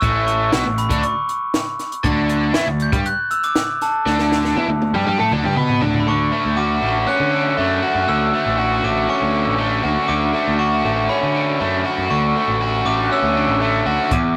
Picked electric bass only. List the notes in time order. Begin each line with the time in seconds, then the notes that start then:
0.02 A1
0.53 B1
0.66 A1
0.91 D2
2.04 D2
2.54 E2
2.67 D2
2.92 G2
4.06 D2
4.56 E2
4.68 D2
4.93 G2
5.06 G2
5.19 A2
5.32 D2
5.44 G2
5.57 B2
5.82 D2
6.07 D2
6.45 D2
6.82 A1
7.20 D3
7.58 F#2
7.95 F#2
8.08 D2
8.46 A1
8.84 A1
9.22 D2
9.47 A1
9.84 D2
10.09 D2
10.48 D2
10.85 A1
11.23 D3
11.61 F#2
11.98 F#2
12.11 D2
12.48 A1
12.85 A1
13.22 D2
13.48 A1
13.86 D2
14.11 E2